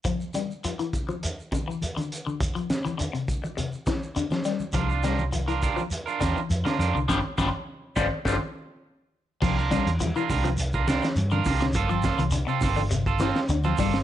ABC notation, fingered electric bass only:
X:1
M:4/4
L:1/16
Q:1/4=103
K:Cmix
V:1 name="Fingered electric bass" clef=bass
z16 | z16 | C,,8 z2 E,, z F,, z F,, C,, | G,,, z G,,, z3 G,,, z G,,, z6 z |
C,,3 E,,2 z C,,6 G,,2 C,,2 | G,,,3 C,,2 z G,,,6 D,,2 G,,,2 |]